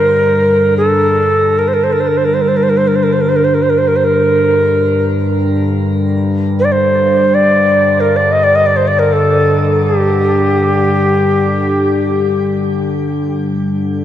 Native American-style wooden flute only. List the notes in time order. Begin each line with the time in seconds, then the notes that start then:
Already playing: A#4
0.78 A4
1.59 A#4
1.68 C5
1.74 A#4
1.84 C5
1.92 A#4
2.00 C5
2.07 A#4
2.17 C5
2.25 A#4
2.34 C5
2.42 A#4
2.48 C5
2.57 A#4
2.63 C5
2.69 A#4
2.77 C5
2.88 A#4
2.96 C5
3.03 A#4
3.13 C5
3.21 A#4
3.29 C5
3.36 A#4
3.44 C5
3.54 A#4
3.62 C5
3.70 A#4
3.78 C5
3.88 A#4
3.96 C5
4.04 A#4
6.59 C5
6.65 D5
6.72 C5
7.34 D5
8.00 A#4
8.16 D5
8.32 D#5
8.44 D5
8.55 D#5
8.66 D5
8.77 C5
8.88 D5
8.99 A#4
9.13 A4
9.83 G4